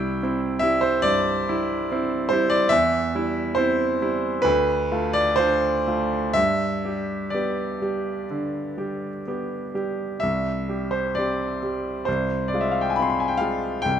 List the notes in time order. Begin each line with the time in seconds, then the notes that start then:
Already playing: C2 G3 E4 G5
0.23 C4 E4
0.59 G3 E4 E5
0.81 C5
1.02 G2 D5
1.49 G3 E4
1.92 C4 E4
2.29 G3 C5
2.33 E4
2.50 D5
2.69 E2 E5
3.15 G3 E4
3.55 C4 E4 C5
4.02 G3 E4
4.42 D2 B4
4.92 A3 F4
5.13 D5
5.36 D4 F4 C5
5.87 A3 F4
6.34 G2 E5
6.85 G3 G4
7.30 D5
7.34 B3 G4
7.82 G3 G4
8.31 D3
8.78 G3 G4
9.27 B3 G4
9.74 G3 G4
10.20 C2 E5
10.68 G3 G4
10.91 C5
11.15 C4 G4 D5
11.63 G3 G4
12.05 C2 C5
12.48 D5
12.54 G#3 F4
12.61 E5
12.71 F5
12.81 G5
12.90 G#5
12.96 C4 F4 B5
13.02 C6
13.10 B5
13.20 G#5
13.28 G5
13.37 G#3 F4 F5
13.82 C2 G5